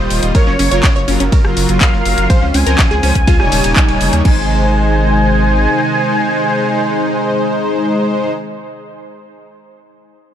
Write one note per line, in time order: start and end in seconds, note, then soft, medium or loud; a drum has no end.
0.00 0.31 D#3 medium
0.00 0.32 G3 medium
0.00 0.33 G3 medium
0.00 2.26 A#3 medium
0.00 0.32 F4 medium
0.00 3.23 F4 medium
0.00 0.25 A#4 loud
0.00 0.25 C5 loud
0.00 0.32 D#5 loud
0.10 0.20 D#1 loud
0.10 open hi-hat medium
0.10 ride medium
0.23 0.32 D#1 medium
0.23 closed hi-hat medium
0.35 2.28 C#3 medium
0.35 0.52 F#3 medium
0.35 2.28 F#3 medium
0.35 0.52 F4 medium
0.35 0.52 A#4 loud
0.35 0.44 A#4 loud
0.35 0.98 C#5 loud
0.35 kick loud
0.35 closed hi-hat medium
0.35 ride medium
0.47 0.57 F#1 medium
0.47 0.56 C#4 medium
0.47 snare soft
0.59 0.69 F#1 loud
0.59 0.69 C#4 medium
0.59 open hi-hat loud
0.59 ride medium
0.71 0.81 F#1 medium
0.71 0.89 F#3 medium
0.71 0.89 F4 medium
0.71 0.89 A#4 medium
0.71 0.81 C#5 medium
0.71 snare medium
0.71 closed hi-hat medium
0.84 0.93 C#4 medium
0.84 kick loud
0.84 snare loud
0.84 clap loud
0.84 closed hi-hat medium
0.84 ride medium
0.96 1.05 F#1 medium
0.96 1.05 C#5 medium
1.08 1.18 F#1 loud
1.08 1.19 F#3 medium
1.08 1.17 C#4 medium
1.08 1.19 F4 medium
1.08 1.19 A#4 loud
1.08 open hi-hat medium
1.08 ride medium
1.20 1.30 F#1 medium
1.20 1.29 C#4 medium
1.20 snare soft
1.20 closed hi-hat medium
1.32 2.20 A#4 medium
1.32 kick loud
1.32 closed hi-hat medium
1.32 ride medium
1.45 1.54 F#1 medium
1.45 1.78 F#3 medium
1.45 1.78 F4 medium
1.45 1.78 A#4 medium
1.45 cross-stick medium
1.57 1.66 F#1 loud
1.57 open hi-hat loud
1.57 ride medium
1.69 1.78 F#1 medium
1.69 closed hi-hat medium
1.81 2.27 F#3 medium
1.81 2.27 F4 medium
1.81 2.27 A#4 loud
1.81 2.56 F5 loud
1.81 kick loud
1.81 snare loud
1.81 clap loud
1.81 closed hi-hat medium
1.81 ride medium
1.93 2.03 F#1 medium
1.93 snare soft
2.06 2.15 F#1 loud
2.06 open hi-hat medium
2.06 ride medium
2.18 2.27 F#1 loud
2.18 closed hi-hat medium
2.30 4.23 C#3 medium
2.30 2.47 F3 loud
2.30 3.26 G#3 medium
2.30 3.26 C4 medium
2.30 2.47 C#4 medium
2.30 2.39 C5 loud
2.30 2.47 C5 loud
2.30 kick loud
2.30 closed hi-hat medium
2.30 ride medium
2.42 2.52 C#2 medium
2.42 2.51 C#4 medium
2.54 2.64 C#2 loud
2.54 2.64 C#4 medium
2.54 4.15 G#5 loud
2.54 open hi-hat loud
2.54 ride medium
2.67 2.76 C#2 medium
2.67 2.84 F3 medium
2.67 2.84 C#4 medium
2.67 2.76 A#4 medium
2.67 2.84 C5 medium
2.67 snare soft
2.67 closed hi-hat medium
2.79 2.88 C#4 medium
2.79 kick loud
2.79 snare loud
2.79 clap loud
2.79 closed hi-hat medium
2.79 ride medium
2.91 3.00 C#2 medium
2.91 3.00 G#4 medium
2.91 snare medium
3.03 3.13 C#2 loud
3.03 3.14 F3 medium
3.03 3.12 C#4 medium
3.03 3.14 C#4 medium
3.03 3.14 C5 loud
3.03 open hi-hat medium
3.03 ride medium
3.15 3.41 C#2 medium
3.15 3.25 C#4 medium
3.15 kick medium
3.15 closed hi-hat medium
3.27 4.24 G3 medium
3.27 4.24 A#3 medium
3.27 4.24 D#4 medium
3.27 4.15 F4 medium
3.27 kick loud
3.27 closed hi-hat medium
3.27 ride medium
3.40 3.49 D#1 medium
3.40 3.73 G3 medium
3.40 3.73 D#4 medium
3.40 3.73 C#5 medium
3.40 cross-stick medium
3.40 snare soft
3.52 3.61 D#1 loud
3.52 open hi-hat loud
3.52 ride medium
3.64 3.74 D#1 medium
3.64 closed hi-hat medium
3.64 ride medium
3.76 4.22 G3 medium
3.76 4.22 D#4 medium
3.76 4.22 C#5 loud
3.76 kick loud
3.76 snare soft
3.76 clap loud
3.76 closed hi-hat medium
3.89 3.98 D#1 medium
3.89 ride medium
4.01 4.10 F1 medium
4.01 open hi-hat medium
4.13 4.22 D#2 medium
4.13 cross-stick medium
4.13 closed hi-hat medium
4.25 5.67 G#1 loud
4.25 8.31 C3 medium
4.25 8.31 D#3 medium
4.25 8.31 G#3 medium
4.25 8.31 D#4 medium
4.25 8.31 C5 loud
4.25 8.31 G#5 loud
4.25 kick loud
4.25 crash medium